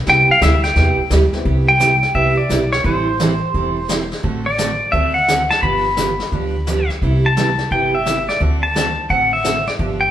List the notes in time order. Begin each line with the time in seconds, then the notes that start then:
0.06 C2 C3 G3 B3 E4 G4 G5, brush sweep, kick, snare
0.28 F5, muted upright bass stroke
0.41 D2 C3 G3 B3 E4 G4 E5, kick, snare, hi-hat pedal
0.64 G5, snare
0.76 E2 C3 G3 B3 E4 G4, brush sweep, kick, snare
0.98 muted upright bass stroke
1.10 D2 C3 G3 B3 E4 G4, kick, snare, hi-hat pedal
1.33 B3 C4 E4 G4 B4, muted upright bass stroke, snare
1.45 C2 C3 G3 B3 E4 G4, brush sweep, kick
1.68 G5
1.80 C3 G3 B3 E4 G4, snare, hi-hat pedal
2.02 snare
2.14 C2 C3 G3 B3 E4 G4 E5, brush sweep, kick
2.37 D5
2.49 B1 C3 G3 B3 E4 G4, snare, hi-hat pedal
2.72 C#5, snare
2.84 A1 E3 G3 C4 E4 A4 C5, brush sweep, kick
3.20 E3 G3 C4 E4 A4, snare, hi-hat pedal
3.54 E1 E3 G3 C4 E4 A4, brush sweep, kick
3.88 E3 G3 C4 E4 A4, snare, hi-hat pedal
4.11 snare
4.23 A1 D3 A3 C4 F#4 A4, brush sweep, kick
4.46 D5
4.58 D3 A3 C4 F#4 A4, snare, hi-hat pedal
4.92 D2 D3 A3 C4 F#4 A4 E5, brush sweep, kick
5.14 F#5
5.28 D3 A3 C4 F#4 A4, snare, hi-hat pedal
5.50 A5, snare
5.62 G1 D3 F3 B3 D4 G4 B5, brush sweep, kick
5.97 D3 F3 B3 D4 G4, snare, hi-hat pedal
6.20 snare
6.32 D2 D3 F3 B3 D4 G4, brush sweep, kick
6.67 D3 F3 B3 D4 G4, snare, hi-hat pedal
6.90 snare
7.02 C2 C3 G3 B3 E4 G4, brush sweep, kick
7.26 A5
7.37 C3 G3 B3 E4 G4, snare, hi-hat pedal
7.58 snare
7.71 G1 C3 G3 B3 E4 G4 G5, brush sweep, kick
7.95 E5
8.05 C3 G3 B3 E4 G4, snare, hi-hat pedal
8.29 D5, snare
8.40 D2 D3 A3 C4 F#4 A4, brush sweep, kick
8.63 A5
8.75 D3 A3 C4 F#4 A4, snare, hi-hat pedal
9.10 A1 D3 A3 C4 F#4 A4 F#5, brush sweep, kick
9.33 E5
9.44 D3 A3 C4 F#4 A4, snare, hi-hat pedal
9.67 D5, snare
9.79 G1 D3 F3 B3 D4 G4, brush sweep, kick
10.01 G5